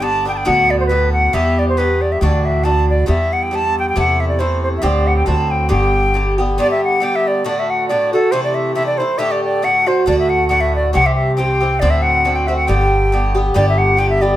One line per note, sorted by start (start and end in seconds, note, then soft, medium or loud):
0.00 0.44 G1 medium
0.00 0.25 G2 soft
0.00 0.25 D3 soft
0.00 0.25 B3 medium
0.00 0.24 D4 medium
0.00 0.26 A5 medium
0.25 0.44 D3 soft
0.25 0.44 B3 soft
0.25 0.45 D4 soft
0.25 0.34 G5 medium
0.34 0.49 G5 medium
0.34 0.38 A5 medium
0.45 1.32 D2 medium
0.45 0.88 A2 medium
0.45 0.89 D3 medium
0.45 0.89 B3 medium
0.45 0.89 F#4 medium
0.45 0.72 F#5 loud
0.71 0.79 D5 medium
0.80 0.86 C5 medium
0.86 1.33 A2 medium
0.86 1.10 B4 medium
0.90 1.33 D3 medium
0.90 1.33 B3 medium
0.90 1.34 F#4 medium
1.13 1.35 F#5 medium
1.33 2.19 E2 medium
1.33 1.76 G2 medium
1.33 1.77 E3 medium
1.33 1.77 B3 medium
1.33 1.78 G4 medium
1.33 1.60 E5 loud
1.59 1.68 D5 medium
1.69 1.79 C5 medium
1.77 2.21 G2 medium
1.77 2.22 E3 medium
1.77 2.22 B3 soft
1.77 2.22 G4 medium
1.77 2.03 B4 medium
2.01 2.14 D5 medium
2.12 2.21 E5 medium
2.21 3.07 D2 medium
2.21 2.62 A2 medium
2.21 2.64 E3 medium
2.21 2.64 D4 medium
2.21 2.65 F#4 medium
2.21 2.47 D5 medium
2.45 2.66 E5 medium
2.64 3.06 A2 soft
2.64 3.06 E3 medium
2.64 3.07 D4 soft
2.64 3.08 F#4 soft
2.64 2.88 A5 medium
2.90 3.08 D5 medium
3.06 3.94 E2 medium
3.06 3.50 G2 medium
3.06 3.51 G3 medium
3.06 3.52 B3 medium
3.06 3.52 E4 medium
3.06 3.35 E5 medium
3.33 3.44 F#5 medium
3.43 3.57 G5 medium
3.51 3.95 G2 soft
3.51 3.96 G3 medium
3.51 3.96 B3 medium
3.51 3.96 E4 medium
3.55 3.77 A5 loud
3.79 3.87 G5 medium
3.89 3.97 G5 medium
3.96 4.82 E2 medium
3.96 4.38 C3 medium
3.96 4.39 E3 medium
3.96 4.39 A3 medium
3.96 4.39 E4 medium
3.96 4.22 F#5 medium
4.20 4.28 E5 medium
4.28 4.41 D5 medium
4.39 4.81 C3 soft
4.39 4.82 E3 medium
4.39 4.83 A3 medium
4.39 4.82 E4 medium
4.39 4.62 C5 medium
4.63 4.69 C5 medium
4.78 4.85 E5 medium
4.82 5.26 D2 medium
4.82 5.25 A2 medium
4.82 5.26 D3 medium
4.82 5.26 C4 medium
4.82 5.27 G4 medium
4.82 5.09 D5 medium
5.07 5.16 F#5 medium
5.17 5.26 G5 medium
5.26 5.70 D2 medium
5.26 5.68 A2 medium
5.26 5.68 D3 medium
5.26 5.69 C4 medium
5.26 5.70 F#4 medium
5.26 5.52 A5 medium
5.51 5.71 G5 medium
5.69 6.57 G1 medium
5.69 6.13 G2 medium
5.69 6.15 D3 medium
5.69 6.14 B3 medium
5.69 6.14 G4 medium
5.69 6.34 G5 medium
6.14 6.38 G2 soft
6.14 6.38 D3 soft
6.14 6.38 B3 soft
6.14 6.37 G4 medium
6.38 6.57 D3 soft
6.38 6.58 B3 soft
6.38 6.58 G4 medium
6.58 6.99 G2 medium
6.58 7.00 D3 medium
6.58 7.01 B3 medium
6.58 7.02 G4 medium
6.58 6.70 D5 loud
6.71 6.81 E5 medium
6.84 7.06 F#5 medium
7.00 7.44 G2 soft
7.00 7.44 D3 medium
7.00 7.45 B3 medium
7.00 7.45 G4 medium
7.00 7.17 G5 medium
7.16 7.29 E5 medium
7.27 7.46 D5 medium
7.45 7.88 A2 medium
7.45 7.89 D3 medium
7.45 7.90 A3 medium
7.45 7.89 F#4 medium
7.45 7.61 D5 medium
7.59 7.72 E5 medium
7.70 7.88 F#5 medium
7.89 8.13 A2 medium
7.89 8.13 D3 medium
7.89 8.12 A3 medium
7.89 8.12 F#4 medium
7.89 8.11 D5 medium
8.13 8.32 D3 soft
8.13 8.32 A3 soft
8.13 8.33 F#4 soft
8.13 8.33 A4 medium
8.32 8.74 C3 medium
8.32 8.75 E3 medium
8.32 8.76 A3 medium
8.32 8.77 E4 medium
8.32 8.43 C5 loud
8.44 8.56 D5 medium
8.55 8.74 E5 medium
8.75 8.99 C3 medium
8.75 9.00 E3 medium
8.75 8.99 A3 medium
8.75 8.98 E4 medium
8.75 8.86 E5 medium
8.86 8.99 D5 medium
8.98 9.18 E3 soft
8.98 9.19 A3 soft
8.98 9.20 E4 soft
8.98 9.20 C5 medium
9.18 9.61 A2 medium
9.18 9.62 D3 medium
9.18 9.62 A3 medium
9.18 9.64 G4 medium
9.18 9.33 E5 medium
9.31 9.43 D5 medium
9.44 9.66 D5 medium
9.62 9.87 A2 soft
9.62 9.87 D3 medium
9.62 9.86 A3 medium
9.62 9.85 F#4 medium
9.62 9.89 F#5 medium
9.86 10.06 D3 soft
9.86 10.06 A3 soft
9.86 10.07 F#4 soft
9.86 10.07 C5 medium
10.06 10.93 D2 medium
10.06 10.48 A2 medium
10.06 10.48 D3 medium
10.06 10.49 A3 medium
10.06 10.50 F#4 medium
10.06 10.18 D5 medium
10.19 10.31 E5 medium
10.30 10.48 F#5 medium
10.48 10.93 A2 medium
10.48 10.94 D3 medium
10.48 10.94 A3 soft
10.48 10.94 F#4 medium
10.48 10.62 F#5 loud
10.61 10.73 E5 medium
10.75 10.93 D5 medium
10.93 11.80 C2 medium
10.93 11.36 G2 medium
10.93 11.37 E3 medium
10.93 11.37 C4 medium
10.93 11.38 G4 medium
10.93 11.08 F#5 loud
11.06 11.15 E5 medium
11.15 11.35 E5 medium
11.36 11.61 G2 medium
11.36 11.61 E3 medium
11.36 11.60 C4 medium
11.36 11.59 G4 medium
11.36 11.81 G5 medium
11.60 11.82 E3 soft
11.60 11.81 C4 soft
11.60 11.81 G4 soft
11.80 12.67 D2 medium
11.80 12.23 A2 medium
11.80 12.25 D3 medium
11.80 12.24 C4 medium
11.80 12.26 F#4 medium
11.80 11.92 D5 loud
11.90 12.04 E5 medium
12.02 12.37 F#5 medium
12.25 12.48 A2 soft
12.25 12.49 D3 medium
12.25 12.48 C4 medium
12.25 12.47 F#4 medium
12.35 12.48 G5 medium
12.47 12.67 D3 soft
12.47 12.69 C4 soft
12.47 12.68 F#4 soft
12.47 12.56 E5 medium
12.56 12.69 F#5 medium
12.67 13.54 G1 medium
12.67 13.11 G2 medium
12.67 13.13 D3 medium
12.67 13.12 B3 medium
12.67 13.12 G4 medium
12.67 13.35 G5 medium
13.12 13.36 G2 medium
13.12 13.36 D3 medium
13.12 13.34 B3 medium
13.12 13.33 G4 medium
13.35 13.54 D3 soft
13.35 13.54 B3 soft
13.35 13.55 G4 medium
13.54 14.37 G1 medium
13.54 13.96 G2 medium
13.54 13.97 D3 medium
13.54 13.97 B3 medium
13.54 13.99 G4 medium
13.54 13.66 D5 medium
13.69 13.80 E5 medium
13.78 14.00 F#5 medium
13.97 14.21 G2 soft
13.97 14.22 D3 medium
13.97 14.21 B3 soft
13.97 14.20 G4 medium
13.97 14.09 G5 loud
14.10 14.23 E5 medium
14.21 14.37 D3 soft
14.21 14.37 B3 soft
14.21 14.37 G4 soft
14.21 14.37 D5 medium